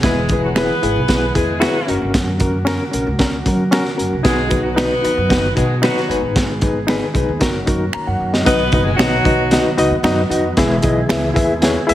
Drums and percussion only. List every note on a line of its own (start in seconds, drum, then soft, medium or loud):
0.03 kick loud
0.03 snare loud
0.03 closed hi-hat loud
0.29 kick medium
0.29 closed hi-hat medium
0.56 finger snap medium
0.56 snare loud
0.56 closed hi-hat medium
0.83 closed hi-hat medium
1.08 kick medium
1.08 snare loud
1.08 closed hi-hat medium
1.35 kick medium
1.35 closed hi-hat medium
1.61 finger snap medium
1.61 snare loud
1.61 closed hi-hat medium
1.88 closed hi-hat medium
2.14 kick loud
2.14 snare loud
2.14 closed hi-hat loud
2.40 kick medium
2.40 closed hi-hat medium
2.67 finger snap medium
2.67 snare medium
2.67 closed hi-hat medium
2.93 closed hi-hat medium
3.19 kick medium
3.19 snare loud
3.19 closed hi-hat medium
3.46 kick medium
3.46 closed hi-hat medium
3.72 finger snap medium
3.72 snare loud
3.72 closed hi-hat medium
3.86 snare soft
3.99 closed hi-hat medium
4.25 kick loud
4.25 snare loud
4.25 closed hi-hat medium
4.51 kick medium
4.51 closed hi-hat medium
4.78 finger snap medium
4.78 snare loud
4.78 closed hi-hat medium
5.04 closed hi-hat medium
5.30 kick loud
5.30 snare loud
5.30 closed hi-hat medium
5.57 kick medium
5.57 closed hi-hat medium
5.83 finger snap medium
5.83 snare loud
5.83 closed hi-hat medium
5.97 snare soft
6.11 closed hi-hat medium
6.36 kick loud
6.36 snare loud
6.36 closed hi-hat loud
6.61 kick medium
6.61 closed hi-hat medium
6.88 finger snap medium
6.88 snare loud
6.88 closed hi-hat medium
7.15 kick medium
7.15 closed hi-hat medium
7.41 kick medium
7.41 snare loud
7.41 closed hi-hat medium
7.67 kick medium
7.67 closed hi-hat medium
7.93 finger snap medium
8.34 snare medium
8.46 kick loud
8.46 snare loud
8.46 closed hi-hat loud
8.72 kick medium
8.72 closed hi-hat medium
8.99 finger snap medium
8.99 snare loud
8.99 closed hi-hat medium
9.25 kick medium
9.25 closed hi-hat medium
9.51 snare loud
9.51 closed hi-hat medium
9.78 closed hi-hat medium
10.04 finger snap medium
10.04 snare loud
10.04 closed hi-hat loud
10.31 closed hi-hat medium
10.57 kick loud
10.57 snare loud
10.57 closed hi-hat loud
10.82 kick medium
10.82 closed hi-hat medium
11.09 finger snap medium
11.09 snare loud
11.09 closed hi-hat medium
11.36 kick medium
11.36 closed hi-hat medium
11.62 snare loud
11.62 closed hi-hat medium
11.89 closed hi-hat loud